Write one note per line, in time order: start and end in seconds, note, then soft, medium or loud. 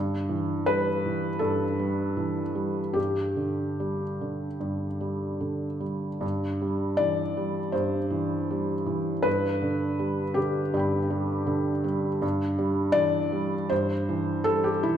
0.00 1.37 G2 medium
0.29 0.89 E3 soft
0.66 1.27 G3 soft
0.66 1.41 B4 loud
1.06 1.64 E3 soft
1.39 2.92 G2 medium
1.39 2.96 A4 medium
1.79 2.41 G3 soft
2.17 2.80 E3 soft
2.55 2.96 G3 soft
2.93 4.57 G2 soft
2.93 5.81 G4 medium
3.36 4.03 D3 soft
3.80 4.45 G3 soft
4.21 4.86 D3 soft
4.60 6.18 G2 soft
5.01 5.65 G3 soft
5.41 6.06 D3 soft
5.80 6.22 G3 soft
6.21 7.70 G2 medium
6.62 7.22 G3 soft
6.97 7.60 E3 soft
6.97 7.74 D5 loud
7.37 7.98 G3 soft
7.72 9.21 G2 medium
7.72 9.25 C5 medium
8.10 8.73 E3 soft
8.51 9.11 G3 soft
8.86 9.25 E3 soft
9.22 10.70 G2 medium
9.22 10.36 B4 medium
9.62 10.23 D3 soft
9.99 10.60 G3 soft
10.34 10.97 D3 soft
10.34 11.84 G4 medium
10.74 12.18 G2 medium
10.74 12.18 D5 soft
10.74 12.19 G5 soft
10.79 12.21 B5 soft
11.10 11.70 G3 soft
11.47 12.07 D3 medium
11.84 12.22 G3 medium
12.22 13.66 G2 medium
12.58 13.17 G3 medium
12.92 13.54 E3 soft
12.92 13.69 D5 loud
13.32 13.93 G3 medium
13.69 14.97 G2 medium
13.69 14.46 C5 medium
14.09 14.70 E3 medium
14.44 14.97 G3 medium
14.44 14.65 A4 loud
14.64 14.84 G4 medium
14.83 14.97 E3 soft
14.83 14.97 E4 medium